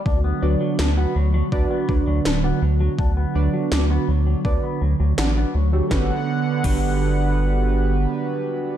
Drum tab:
CC |--------|--------|--x-----|
SD |--o---o-|--o---o-|o-------|
BD |o---oo--|o---o---|o-o-----|